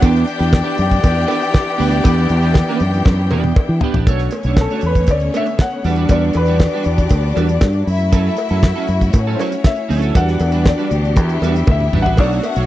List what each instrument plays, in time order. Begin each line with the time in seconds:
Already playing: string section D4
0.01 fingered electric bass E2, string section E3 B3 E4 G4, clean electric guitar B3 D4 G4 B4, horn section B3 G4 D5, violin section G4 G5, kick, closed hi-hat, cowbell
0.16 closed hi-hat
0.26 muted clean electric guitar stroke, closed hi-hat
0.39 fingered electric bass E2, clean electric guitar B3 D4 G4 B4, closed hi-hat
0.52 muted clean electric guitar stroke, kick, snare, cowbell
0.64 clean electric guitar B3 D4 G4 B4
0.77 fingered electric bass F#2, muted clean electric guitar stroke, closed hi-hat
0.90 muted clean electric guitar stroke, kick, closed hi-hat
1.03 fingered electric bass E2, kick, closed hi-hat, cowbell
1.15 muted clean electric guitar stroke
1.27 clean electric guitar B3 D4 G4 B4, closed hi-hat, cowbell
1.40 muted clean electric guitar stroke, closed hi-hat
1.54 kick, snare, cowbell
1.78 fingered electric bass D2, clean electric guitar B3 D4 G4 B4, open hi-hat
1.90 clean electric guitar B3 D4 G4 B4, closed hi-hat
2.04 fingered electric bass E2, clean electric guitar B3 D4 G4 B4, kick, closed hi-hat, cowbell
2.18 closed hi-hat
2.29 fingered electric bass E2, muted clean electric guitar stroke, closed hi-hat
2.42 clean electric guitar B3 D4 G4 B4, closed hi-hat
2.54 muted clean electric guitar stroke, kick, snare, cowbell
2.69 clean electric guitar B3 D4 G4 B4, closed hi-hat
2.80 fingered electric bass F#2, muted clean electric guitar stroke, closed hi-hat
2.94 muted clean electric guitar stroke, closed hi-hat
3.05 fingered electric bass F#2, kick, snare, cowbell
3.19 muted clean electric guitar stroke
3.31 fingered electric bass E2, clean electric guitar B3 D4 G4 B4, high tom, cowbell
3.44 muted clean electric guitar stroke, high tom
3.56 muted clean electric guitar stroke, kick, cowbell
3.69 fingered electric bass E3, muted clean electric guitar stroke
3.81 clean electric guitar B3 D4 G4 B4, floor tom
3.94 fingered electric bass A1, clean electric guitar B3 D4 G4 B4, floor tom
4.07 fingered electric bass B1, string section D3 A3 B3, clean electric guitar A3 D4 F#4 C#5, violin section C#4 C#5, kick, closed hi-hat, cowbell
4.19 snare, closed hi-hat
4.31 muted clean electric guitar stroke, closed hi-hat, cowbell
4.43 fingered electric bass B1, clean electric guitar F#4 C#5, closed hi-hat
4.47 clean electric guitar A3 D4
4.57 muted clean electric guitar stroke, kick, snare, cowbell
4.61 grand piano A4
4.70 clean electric guitar A3 D4 F#4 C#5, closed hi-hat
4.81 fingered electric bass E2, muted clean electric guitar stroke, closed hi-hat
4.86 grand piano B4
4.95 muted clean electric guitar stroke, kick, closed hi-hat
5.07 fingered electric bass D2, kick, closed hi-hat, cowbell
5.11 grand piano D5
5.20 muted clean electric guitar stroke, closed hi-hat
5.34 clean electric guitar A3 D4 F#4 C#5, grand piano E5, closed hi-hat, cowbell
5.46 muted clean electric guitar stroke, closed hi-hat
5.59 grand piano F#5, muted clean electric guitar stroke, kick, snare, cowbell
5.70 muted clean electric guitar stroke, closed hi-hat
5.82 fingered electric bass E2, string section E3 D4 F#4 G4, clean electric guitar G3 D4 F#4, violin section D4 D5, open hi-hat
5.87 clean electric guitar B4
5.96 clean electric guitar G3 D4 F#4 B4, closed hi-hat
6.09 fingered electric bass E2, clean electric guitar G3 D4 F#4 B4, grand piano D5, kick, closed hi-hat, cowbell
6.33 fingered electric bass E2, grand piano B4, muted clean electric guitar stroke, closed hi-hat, cowbell
6.46 clean electric guitar D4 F#4 B4, closed hi-hat
6.50 clean electric guitar G3
6.60 muted clean electric guitar stroke, kick, snare, cowbell
6.73 clean electric guitar G3 D4 F#4 B4
6.84 fingered electric bass E2, muted clean electric guitar stroke, closed hi-hat
6.98 muted clean electric guitar stroke, kick, closed hi-hat
7.09 fingered electric bass D2, kick, closed hi-hat, cowbell
7.23 muted clean electric guitar stroke
7.35 fingered electric bass E2, clean electric guitar G3 D4 F#4 B4, closed hi-hat, cowbell
7.49 muted clean electric guitar stroke, closed hi-hat
7.61 fingered electric bass G2, kick, snare, cowbell
7.73 muted clean electric guitar stroke, closed hi-hat
7.86 fingered electric bass F#2, string section A3 E4 F#4, violin section E4 E5, open hi-hat
7.99 muted clean electric guitar stroke, closed hi-hat
8.12 clean electric guitar F#3 C#4 E4 A4, kick, closed hi-hat, cowbell
8.37 muted clean electric guitar stroke, closed hi-hat, cowbell
8.49 fingered electric bass F#2, clean electric guitar F#3 C#4 E4 A4, closed hi-hat
8.63 muted clean electric guitar stroke, kick, snare, cowbell
8.75 clean electric guitar F#3 C#4 E4 A4, closed hi-hat
8.88 fingered electric bass F#2, muted clean electric guitar stroke, closed hi-hat
9.01 muted clean electric guitar stroke, kick, closed hi-hat
9.13 fingered electric bass A2, violin section C#4 C#5, muted clean electric guitar stroke, kick, closed hi-hat, cowbell
9.27 clean electric guitar F#3 C#4 E4 A4
9.35 grand piano C5
9.39 clean electric guitar F#3 C#4 E4 A4, grand piano C#5, closed hi-hat, cowbell
9.52 muted clean electric guitar stroke, closed hi-hat
9.64 grand piano E5, muted clean electric guitar stroke, kick, snare, cowbell
9.76 muted clean electric guitar stroke, closed hi-hat
9.89 fingered electric bass D2, clean electric guitar F#3 C#4 E4 A4, open hi-hat
10.02 clean electric guitar F#3 C#4 E4 A4, closed hi-hat
10.14 fingered electric bass E2, string section E3 B3 D4 F#4 G4, clean electric guitar G3 D4 F#4 B4, violin section D4 D5, grand piano F#5, kick, closed hi-hat, cowbell
10.28 snare, closed hi-hat
10.40 fingered electric bass E2, muted clean electric guitar stroke, closed hi-hat, cowbell
10.52 clean electric guitar G3 D4 F#4 B4, closed hi-hat
10.65 grand piano D5, muted clean electric guitar stroke, kick, snare, cowbell
10.78 clean electric guitar G3 D4 F#4 B4, closed hi-hat
10.91 fingered electric bass D2, muted clean electric guitar stroke, closed hi-hat
11.04 muted clean electric guitar stroke, closed hi-hat
11.16 fingered electric bass E2, violin section E4 E5, kick, closed hi-hat, cowbell
11.29 muted clean electric guitar stroke, closed hi-hat
11.42 fingered electric bass E2, clean electric guitar G3 D4 F#4 B4, closed hi-hat, cowbell
11.56 muted clean electric guitar stroke, closed hi-hat
11.67 fingered electric bass D2, muted clean electric guitar stroke, kick, high tom, cowbell
11.71 grand piano E5
11.80 muted clean electric guitar stroke, mid tom
11.93 fingered electric bass A1, clean electric guitar G3 D4 F#4 B4, mid tom
12.02 clean electric guitar B4, grand piano F#5, floor tom
12.07 clean electric guitar G3 D4 F#4
12.17 fingered electric bass B1, string section A3 D4, clean electric guitar A3 D4 F#4 C#5, violin section F#4 F#5, grand piano D5, kick, cowbell, crash
12.32 closed hi-hat
12.43 grand piano E5, muted clean electric guitar stroke, closed hi-hat, cowbell
12.56 fingered electric bass B1, clean electric guitar A3 D4 F#4 C#5, closed hi-hat